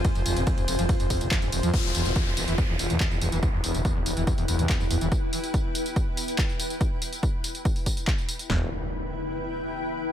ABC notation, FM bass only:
X:1
M:4/4
L:1/16
Q:1/4=142
K:Ephr
V:1 name="FM bass" clef=bass
z F,,, F,,, F,,, z F,,, F,,, F,,, z F,,, F,,, F,,, z G,,, F,,, F,, | z E,,, E,,, E,,, z E,,, E,,, E,,, z E,,, E,,, E,, z E,,, E,,, E,,, | z E,,, E,,, E,,, z E,,, E,,, E,,, z E,,, E,,, E,, z E,,, E,,, E,,, | z16 |
z16 | E,,,2 z12 z2 |]